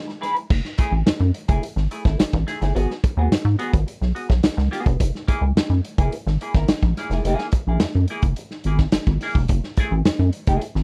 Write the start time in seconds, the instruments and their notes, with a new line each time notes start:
0.08 muted clean electric guitar stroke, snare
0.21 clean electric guitar E4 G#4 B4, snare, closed hi-hat
0.36 muted clean electric guitar stroke, closed hi-hat
0.50 analog synth bass F#1, kick, crash
0.65 snare
0.78 clean electric guitar A3 E4 G#4, kick, closed hi-hat
0.92 analog synth bass A1
1.06 analog synth bass F#2, muted clean electric guitar stroke, snare, closed hi-hat
1.20 analog synth bass F#2, muted clean electric guitar stroke
1.34 closed hi-hat
1.48 analog synth bass F#1, clean electric guitar A3 E4 G#4, kick, closed hi-hat
1.63 muted clean electric guitar stroke, closed hi-hat
1.76 analog synth bass G#1, muted clean electric guitar stroke, snare
1.91 clean electric guitar A3 E4 G#4, closed hi-hat
2.05 analog synth bass G#1, clean electric guitar A3 E4 A4, kick, snare
2.19 analog synth bass A1, muted clean electric guitar stroke, snare, closed hi-hat
2.33 analog synth bass A1, muted clean electric guitar stroke, kick
2.47 clean electric guitar A3 E4 G#4, snare, closed hi-hat
2.61 analog synth bass G1, clean electric guitar A3 E4 G#4, snare, closed hi-hat
2.75 analog synth bass G#1, clean electric guitar B3 F#4 G#4, closed hi-hat
2.91 snare
3.04 muted clean electric guitar stroke, kick, closed hi-hat
3.17 analog synth bass D#2, clean electric guitar B3 F#4 G#4
3.31 analog synth bass G#2, muted clean electric guitar stroke, snare, closed hi-hat
3.45 analog synth bass G#2, muted clean electric guitar stroke
3.59 clean electric guitar B3 F#4 G#4, closed hi-hat
3.73 analog synth bass G#1, muted clean electric guitar stroke, kick, closed hi-hat
3.87 muted clean electric guitar stroke, closed hi-hat
4.01 analog synth bass B1, snare
4.15 clean electric guitar B3 F#4 G#4, closed hi-hat
4.29 analog synth bass B1, muted clean electric guitar stroke, kick, snare
4.43 analog synth bass C#2, muted clean electric guitar stroke, snare, closed hi-hat
4.57 analog synth bass C#2, muted clean electric guitar stroke, snare
4.71 clean electric guitar B3 F#4 G#4, snare, closed hi-hat
4.86 analog synth bass F1, muted clean electric guitar stroke, kick, closed hi-hat
5.00 analog synth bass F#1, kick, closed hi-hat
5.15 snare
5.28 clean electric guitar A#3 E4 G#4, kick, closed hi-hat
5.41 analog synth bass C#2
5.55 analog synth bass F#2, muted clean electric guitar stroke, snare, closed hi-hat
5.70 analog synth bass F#2, muted clean electric guitar stroke
5.85 closed hi-hat
5.98 analog synth bass F#1, clean electric guitar A#3 E4 G#4, kick, closed hi-hat
6.12 muted clean electric guitar stroke, closed hi-hat
6.26 analog synth bass G#1, muted clean electric guitar stroke, snare
6.41 clean electric guitar A#3 E4 G#4, closed hi-hat
6.54 analog synth bass G#1, clean electric guitar A#3 E4 A#4, kick, snare
6.68 analog synth bass A#1, muted clean electric guitar stroke, snare, closed hi-hat
6.82 analog synth bass A#1, muted clean electric guitar stroke, kick
6.97 clean electric guitar A#3 E4 G#4, snare, closed hi-hat
7.10 analog synth bass F1, clean electric guitar A#3 E4 G#4, snare, closed hi-hat
7.24 analog synth bass F#1, clean electric guitar A#3 E4 G#4, closed hi-hat
7.38 snare
7.52 muted clean electric guitar stroke, kick, closed hi-hat
7.67 analog synth bass A#1, clean electric guitar A#3 E4 G#4
7.80 analog synth bass F#2, muted clean electric guitar stroke, snare, closed hi-hat
7.95 analog synth bass F#2, muted clean electric guitar stroke
8.08 clean electric guitar A#3 E4 G#4, closed hi-hat
8.22 analog synth bass F#1, muted clean electric guitar stroke, kick, closed hi-hat
8.36 muted clean electric guitar stroke, closed hi-hat
8.51 snare
8.64 analog synth bass G#1, clean electric guitar A#3 E4 G#4, closed hi-hat
8.79 muted clean electric guitar stroke, kick, snare
8.92 analog synth bass G#1, muted clean electric guitar stroke, snare, closed hi-hat
9.07 analog synth bass G#1, muted clean electric guitar stroke, kick
9.21 clean electric guitar A#3 E4 G#4, snare, open hi-hat
9.35 analog synth bass F1, muted clean electric guitar stroke, kick
9.48 analog synth bass F#1, kick, closed hi-hat
9.64 snare
9.77 clean electric guitar A3 E4 G#4, kick, closed hi-hat
9.91 analog synth bass A1
10.05 analog synth bass F#2, muted clean electric guitar stroke, snare, closed hi-hat
10.19 analog synth bass F#2, muted clean electric guitar stroke
10.33 closed hi-hat
10.47 analog synth bass F#1, clean electric guitar A3 E4 G#4, kick, closed hi-hat
10.61 muted clean electric guitar stroke, closed hi-hat
10.75 analog synth bass G#1, muted clean electric guitar stroke, snare